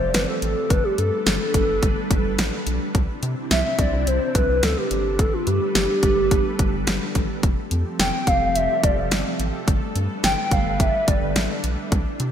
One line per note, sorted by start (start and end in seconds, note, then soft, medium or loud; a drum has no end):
0.00 0.13 F1 loud
0.00 0.68 F3 medium
0.00 0.68 C4 medium
0.00 0.68 G4 medium
0.00 2.91 A4 medium
0.00 0.13 C5 medium
0.14 0.27 G1 medium
0.14 0.20 B4 medium
0.14 snare loud
0.14 closed hi-hat medium
0.28 0.41 A4 medium
0.42 0.55 A1 medium
0.42 0.71 A4 medium
0.42 closed hi-hat medium
0.70 0.83 G1 loud
0.70 2.93 G3 medium
0.70 2.93 D4 medium
0.70 0.85 B4 loud
0.70 2.93 B4 medium
0.70 kick loud
0.70 closed hi-hat medium
0.84 1.00 G4 medium
0.98 1.11 G2 medium
0.98 1.26 A4 medium
0.98 closed hi-hat medium
1.26 1.39 G1 loud
1.26 2.35 A4 medium
1.26 snare loud
1.26 closed hi-hat medium
1.54 1.67 G1 loud
1.54 kick medium
1.54 closed hi-hat medium
1.69 1.81 G1 medium
1.83 1.95 G1 loud
1.83 kick medium
1.83 closed hi-hat medium
2.11 2.23 G1 loud
2.11 kick medium
2.11 closed hi-hat medium
2.25 2.37 G1 loud
2.39 2.51 A1 loud
2.39 snare loud
2.39 closed hi-hat medium
2.67 2.79 B1 medium
2.67 closed hi-hat medium
2.95 3.07 C2 loud
2.95 4.89 C3 medium
2.95 4.89 C4 medium
2.95 7.39 D4 medium
2.95 4.89 E4 medium
2.95 kick loud
2.95 closed hi-hat medium
3.23 3.35 C3 loud
3.23 closed hi-hat medium
3.51 3.63 C2 loud
3.51 3.64 E5 loud
3.51 snare loud
3.51 closed hi-hat medium
3.65 3.81 E5 loud
3.79 3.91 C2 loud
3.79 4.09 D5 loud
3.79 kick medium
3.79 closed hi-hat medium
3.93 4.05 C2 medium
4.07 4.19 C2 loud
4.07 4.37 C5 loud
4.07 closed hi-hat medium
4.35 4.47 C2 loud
4.35 4.65 B4 loud
4.35 kick medium
4.35 closed hi-hat medium
4.49 4.61 C2 loud
4.63 4.75 D2 loud
4.63 4.79 A4 loud
4.63 snare loud
4.63 closed hi-hat medium
4.77 4.91 G4 medium
4.91 5.28 G1 loud
4.91 7.41 G3 medium
4.91 5.21 G4 medium
4.91 7.41 A4 medium
4.91 7.41 B4 medium
4.91 closed hi-hat medium
5.19 5.35 A4 loud
5.19 kick loud
5.19 closed hi-hat medium
5.33 5.49 F4 medium
5.47 5.60 G2 loud
5.47 5.75 G4 medium
5.47 closed hi-hat medium
5.75 5.88 G1 loud
5.75 6.83 G4 medium
5.75 snare loud
5.75 closed hi-hat medium
6.03 6.15 G1 loud
6.03 kick medium
6.03 closed hi-hat medium
6.17 6.30 G1 medium
6.31 6.44 G1 loud
6.31 kick medium
6.31 closed hi-hat medium
6.59 6.72 G1 loud
6.59 kick medium
6.59 closed hi-hat medium
6.73 6.86 G1 medium
6.87 7.00 G1 loud
6.87 snare loud
6.87 closed hi-hat medium
7.15 7.28 A1 medium
7.15 kick medium
7.15 closed hi-hat medium
7.43 7.56 F1 loud
7.43 9.65 F3 medium
7.43 9.65 C4 medium
7.43 9.65 G4 medium
7.43 11.88 A4 medium
7.43 kick loud
7.43 closed hi-hat medium
7.71 7.84 F2 loud
7.71 closed hi-hat medium
7.99 8.12 F1 medium
7.99 8.12 G5 loud
7.99 snare loud
7.99 closed hi-hat medium
8.13 8.29 G5 loud
8.27 8.40 F1 medium
8.27 8.57 F5 loud
8.27 kick medium
8.27 closed hi-hat medium
8.41 8.54 F1 medium
8.55 8.68 F1 loud
8.55 8.85 E5 loud
8.55 closed hi-hat medium
8.83 8.96 F1 loud
8.83 9.12 D5 medium
8.83 kick medium
8.83 closed hi-hat medium
8.98 9.10 F1 loud
9.12 9.24 G1 medium
9.12 snare loud
9.12 closed hi-hat medium
9.40 9.52 A1 medium
9.40 closed hi-hat medium
9.68 9.80 G1 loud
9.68 11.90 G3 medium
9.68 12.32 D4 medium
9.68 11.90 B4 medium
9.68 kick loud
9.68 closed hi-hat medium
9.96 10.08 G2 medium
9.96 closed hi-hat medium
10.24 10.36 G1 medium
10.24 10.37 G5 loud
10.24 snare loud
10.24 closed hi-hat medium
10.38 10.53 G5 loud
10.51 10.64 G1 loud
10.51 10.81 F5 loud
10.51 kick medium
10.51 closed hi-hat medium
10.66 10.78 G1 loud
10.80 10.92 G1 loud
10.80 11.09 E5 loud
10.80 kick medium
10.80 closed hi-hat medium
11.08 11.20 G1 loud
11.08 11.36 D5 medium
11.08 kick medium
11.08 closed hi-hat medium
11.22 11.34 G1 loud
11.36 11.48 A1 loud
11.36 snare loud
11.36 closed hi-hat medium
11.64 11.76 B1 medium
11.64 closed hi-hat medium
11.92 12.04 C2 loud
11.92 12.32 C3 medium
11.92 12.32 C4 medium
11.92 12.32 E4 medium
11.92 kick loud
11.92 closed hi-hat medium
12.20 12.32 C3 loud
12.20 closed hi-hat medium